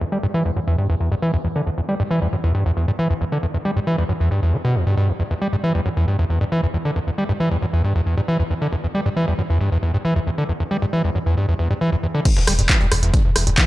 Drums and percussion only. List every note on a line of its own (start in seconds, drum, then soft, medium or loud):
12.25 kick loud
12.25 closed hi-hat medium
12.25 crash loud
12.37 snare medium
12.47 cross-stick medium
12.47 closed hi-hat medium
12.47 open hi-hat loud
12.59 closed hi-hat medium
12.69 kick loud
12.69 snare loud
12.69 clap loud
12.69 closed hi-hat medium
12.81 closed hi-hat soft
12.92 cross-stick medium
12.92 closed hi-hat medium
12.92 open hi-hat loud
13.03 closed hi-hat medium
13.14 kick loud
13.14 closed hi-hat medium
13.36 cross-stick medium
13.36 closed hi-hat medium
13.36 open hi-hat loud
13.47 closed hi-hat medium
13.58 kick loud
13.58 snare loud
13.58 clap loud
13.58 closed hi-hat medium